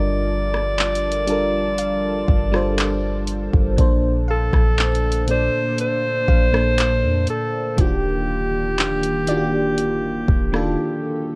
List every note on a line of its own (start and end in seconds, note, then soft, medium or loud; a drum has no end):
0.00 2.24 G1 loud
0.00 0.75 G3 medium
0.00 3.74 G3 medium
0.00 0.75 D4 medium
0.00 11.35 D4 medium
0.00 0.76 F4 medium
0.00 3.74 F4 medium
0.00 0.76 A4 medium
0.00 0.77 A#4 medium
0.00 3.25 D5 loud
0.00 3.74 A5 medium
0.54 cross-stick medium
0.78 clap loud
0.78 closed hi-hat soft
0.95 closed hi-hat medium
1.12 closed hi-hat medium
1.27 2.09 G3 medium
1.27 2.09 D4 medium
1.27 2.10 F4 medium
1.27 2.10 A4 medium
1.27 2.11 A#4 loud
1.27 closed hi-hat medium
1.78 3.98 F5 medium
1.78 closed hi-hat medium
2.28 3.49 G1 loud
2.28 kick medium
2.52 3.34 G3 medium
2.52 3.34 D4 medium
2.52 3.35 F4 medium
2.52 3.35 A4 medium
2.52 3.36 C5 loud
2.52 cross-stick medium
2.78 clap loud
2.78 closed hi-hat medium
3.27 closed hi-hat medium
3.54 3.78 G1 loud
3.54 kick medium
3.77 4.50 A#1 loud
3.77 4.75 A#2 medium
3.77 4.75 A#3 medium
3.77 11.35 A#3 medium
3.77 4.76 D4 medium
3.77 7.74 A4 medium
3.77 4.76 A4 medium
3.77 kick loud
3.77 closed hi-hat medium
3.81 4.77 C5 loud
4.28 5.26 A4 loud
4.28 6.27 F5 medium
4.53 5.49 A#1 loud
4.53 kick medium
4.53 cross-stick medium
4.78 clap loud
4.78 closed hi-hat soft
4.95 closed hi-hat medium
5.12 closed hi-hat medium
5.27 6.09 A#2 medium
5.27 6.09 A#3 medium
5.27 6.10 D4 medium
5.27 6.10 A4 medium
5.27 5.76 C5 loud
5.27 closed hi-hat medium
5.31 6.11 D5 medium
5.78 7.25 C5 loud
5.78 closed hi-hat medium
6.28 7.05 A#1 loud
6.28 8.24 F5 medium
6.28 kick loud
6.52 7.34 A#2 medium
6.52 7.34 A#3 medium
6.52 7.35 D4 medium
6.52 7.35 A4 medium
6.52 7.36 C5 medium
6.52 cross-stick loud
6.78 clap loud
6.78 closed hi-hat medium
7.03 7.27 F2 loud
7.27 7.82 A4 medium
7.27 closed hi-hat medium
7.77 10.24 D#1 loud
7.77 8.75 D#3 medium
7.77 11.35 D#3 medium
7.77 8.75 A#3 medium
7.77 8.76 D4 medium
7.77 11.35 F4 medium
7.77 8.76 F4 medium
7.77 11.35 G4 loud
7.77 11.29 G4 medium
7.77 kick loud
7.77 closed hi-hat medium
7.81 7.86 F#4 medium
7.87 8.80 G4 medium
8.78 clap loud
8.78 closed hi-hat soft
9.03 closed hi-hat medium
9.27 10.09 D#3 medium
9.27 10.09 A#3 medium
9.27 10.10 D4 medium
9.27 10.10 F4 medium
9.27 11.35 D5 medium
9.27 closed hi-hat medium
9.31 9.36 F#4 medium
9.37 10.14 G4 loud
9.78 closed hi-hat medium
10.28 10.76 D#1 loud
10.28 kick loud
10.52 11.34 D#3 medium
10.52 11.34 A#3 medium
10.52 11.35 D4 medium
10.52 11.35 F4 medium
10.52 11.35 A4 loud
10.52 cross-stick medium